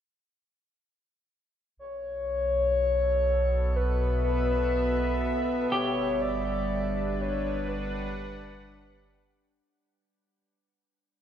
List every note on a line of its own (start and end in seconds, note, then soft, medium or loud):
1.77 5.67 B1 medium
1.77 5.73 B2 medium
1.77 3.78 C#5 loud
2.28 6.99 A4 medium
2.62 7.29 B3 medium
3.55 6.96 E5 medium
3.76 4.24 B4 medium
4.25 5.68 B4 loud
5.72 9.61 G1 medium
5.72 9.66 G3 medium
5.72 8.57 G4 medium
5.72 6.23 C#5 medium
6.21 7.11 D5 loud
6.40 9.64 D4 medium
6.57 9.65 B4 medium
7.11 7.23 D5 medium
7.11 9.66 F#5 medium
7.21 7.70 C#5 loud
7.68 9.16 B4 loud